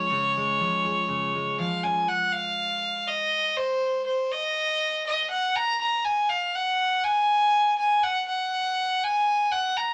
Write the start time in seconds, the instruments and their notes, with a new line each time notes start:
Already playing: steel-string acoustic guitar G#3, fiddle C#5
0.10 steel-string acoustic guitar C#3 G#4
0.37 steel-string acoustic guitar G#3
0.60 steel-string acoustic guitar F3 C#4
0.85 steel-string acoustic guitar G#4
1.08 steel-string acoustic guitar C#3
1.35 steel-string acoustic guitar G#3
1.59 steel-string acoustic guitar F3, fiddle F5
1.83 steel-string acoustic guitar C#4, fiddle G#5
2.08 fiddle F#5
2.32 fiddle F5
3.07 fiddle D#5
3.57 fiddle C5
4.06 fiddle C5
4.32 fiddle D#5
5.07 fiddle D#5
5.30 fiddle F#5
5.55 fiddle A#5
5.81 fiddle A#5
6.05 fiddle G#5
6.29 fiddle F5
6.55 fiddle F#5
7.04 fiddle G#5
7.78 fiddle G#5
8.03 fiddle F#5
8.28 fiddle F#5
9.04 fiddle G#5
9.52 fiddle F#5
9.77 fiddle A#5